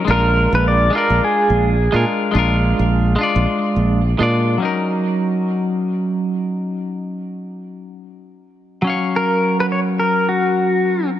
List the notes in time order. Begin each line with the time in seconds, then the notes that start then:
0.05 A#1 G#3 D4
0.10 F4 A#4
0.53 A#1 B4
0.68 D5
0.90 G#3 D4
0.95 F4 A#4 D5
1.10 A#1
1.24 G#4
1.50 A#1
1.92 A#2 G#3 D4 F4 A#4
2.31 A#1 G#3 D4
2.36 F4 A#4
2.79 A#1
3.16 G#3 D4
3.21 F4 D5
3.36 A#1
3.76 A#1
4.19 A#2 G#3 D4 F4 D5
4.58 F#3 C#4
4.62 D#4 A#4
8.82 F#3 C#4
8.87 C#5 F5
9.16 A#4
9.60 B4
9.72 C#5
9.99 A#4
10.29 F#4